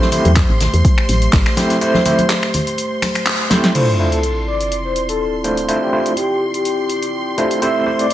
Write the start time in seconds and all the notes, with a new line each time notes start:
Already playing: A3 G4 C5 C6
0.01 snare, high conga
0.12 A3 C4 E4 G4 C5, open hi-hat, low conga, shaker
0.25 E2, closed hi-hat, high conga
0.36 kick, snare, clap, closed hi-hat, shaker
0.49 A1, closed hi-hat
0.60 snare, open hi-hat, low conga, shaker
0.73 E2, closed hi-hat
0.85 kick, closed hi-hat, shaker
0.98 finger snap
1.09 A1, open hi-hat, high conga, shaker
1.22 closed hi-hat
1.32 A1, kick, snare, clap, shaker
1.46 finger snap, snare
1.56 A3 C4 E4 G4 C5, snare, open hi-hat, high conga, shaker
1.70 snare, closed hi-hat
1.81 A3 C4 E4 G4 C5, closed hi-hat, shaker
1.94 snare, high conga
2.05 A3 C4 E4 G4 C5, open hi-hat, low conga, shaker
2.18 closed hi-hat, high conga
2.30 snare, clap, closed hi-hat, shaker
2.42 finger snap, snare
2.54 open hi-hat, low conga, shaker
2.67 closed hi-hat
2.78 closed hi-hat, shaker
3.02 finger snap, snare, open hi-hat, high conga
3.15 finger snap, closed hi-hat
3.26 clap, closed hi-hat, shaker
3.50 A3 C4 E4 G4 C5, snare, open hi-hat, high conga, shaker
3.64 snare, closed hi-hat, open hi-hat
3.75 A3 C4 D4 E4 F4 C5 D5 C6, closed hi-hat, crash, sub drop
3.99 A3 D4 E4 F4 C5
4.12 A4, closed hi-hat
4.23 closed hi-hat
4.48 D5
4.61 closed hi-hat
4.72 closed hi-hat
4.85 C5
4.96 closed hi-hat
5.09 A4, closed hi-hat
5.44 A3 D4 E4 F4 C5, closed hi-hat
5.57 closed hi-hat
5.68 A3 D4 E4 F4 C5, closed hi-hat
5.82 G4
5.93 A3 D4 E4 F4 C5
6.06 closed hi-hat
6.17 G4, closed hi-hat
6.54 G4, closed hi-hat
6.65 closed hi-hat
6.90 closed hi-hat
7.03 closed hi-hat
7.38 A3 D4 E4 F4 C5, closed hi-hat
7.51 closed hi-hat
7.62 A3 C4 E4 G4 C5 E5, closed hi-hat
7.86 A3 C4 E4 G4 C5
7.99 D5, closed hi-hat
8.10 closed hi-hat